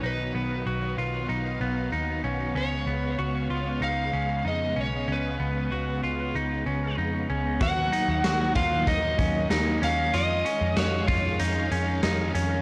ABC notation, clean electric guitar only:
X:1
M:4/4
L:1/8
Q:1/4=95
K:C#mix
V:1 name="Clean electric guitar"
D B, F E D B, D C | C B, F E D C D C | C B, F E D C D C | F D F E D C D C |
E C F E D C D C |]